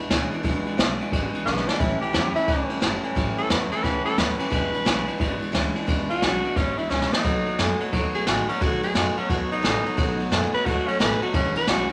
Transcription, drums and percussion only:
0.10 snare, ride
0.33 ride
0.44 kick, ride
0.66 ride
0.79 snare, ride
1.01 ride
1.12 kick, ride
1.34 ride
1.47 snare
1.57 snare
1.69 snare
1.80 kick, ride
2.02 ride
2.14 snare, ride
2.36 ride
2.48 kick, ride
2.70 ride
2.82 snare, ride
3.04 ride
3.16 kick, ride
3.38 ride
3.50 snare, ride
3.71 ride
3.84 kick, snare, ride
4.06 ride
4.18 snare, ride
4.39 ride
4.52 kick, ride
4.74 ride
4.86 snare, ride
5.08 ride
5.20 kick, ride
5.42 ride
5.54 snare, ride
5.76 ride
5.88 kick, ride
6.10 ride
6.22 snare, ride
6.44 ride
6.56 kick, snare, ride
6.78 ride
6.90 snare
7.02 snare
7.13 snare
7.24 kick, ride
7.46 ride
7.59 snare, ride
7.80 ride
7.93 kick, ride
8.14 ride
8.27 snare, ride
8.49 ride
8.61 kick, ride
8.83 ride
8.95 snare, ride
9.17 ride
9.30 kick, ride
9.52 ride
9.64 snare, ride
9.86 ride
9.98 kick, ride
10.20 ride
10.32 snare, ride
10.54 ride
10.66 kick, ride
10.88 ride
11.00 snare, ride
11.22 ride
11.34 kick, ride
11.56 ride
11.67 snare, ride

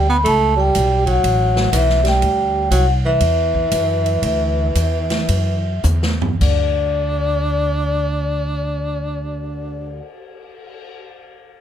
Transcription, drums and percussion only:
0.26 ride
0.75 hi-hat pedal, ride
1.07 kick, ride
1.24 ride
1.56 snare
1.73 hi-hat pedal, ride
1.90 snare
2.05 snare, ride
2.22 ride
2.71 hi-hat pedal, ride
3.21 ride
3.55 kick
3.72 hi-hat pedal, ride
4.06 ride
4.23 ride
4.75 hi-hat pedal, ride
5.10 snare, ride
5.29 ride
5.83 hi-hat pedal, mid tom
6.03 snare
6.22 floor tom
6.41 kick, crash
6.79 cymbal swell

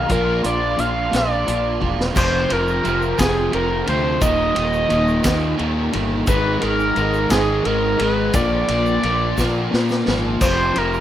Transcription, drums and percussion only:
0.09 kick, closed hi-hat
0.44 closed hi-hat
0.78 closed hi-hat
1.13 snare, closed hi-hat
1.48 closed hi-hat
1.82 kick
2.00 snare
2.16 kick, crash, shaker
2.50 ride
2.68 shaker
2.85 ride, shaker
3.02 shaker
3.19 kick, snare, ride, shaker
3.53 ride
3.87 ride
4.21 kick, ride, shaker
4.56 ride
4.73 shaker
4.90 ride, shaker
5.08 shaker
5.24 kick, snare, ride, shaker
5.59 ride
5.93 ride
6.27 kick, ride, shaker
6.62 ride
6.79 shaker
6.96 ride, shaker
7.13 shaker
7.30 kick, snare, ride, shaker
7.65 ride
7.99 ride
8.33 kick, ride, shaker
8.68 ride
8.86 shaker
9.03 ride
9.38 kick, snare, shaker
9.73 snare
9.89 snare, shaker
10.08 snare
10.41 kick, crash, shaker
10.76 ride
10.94 shaker

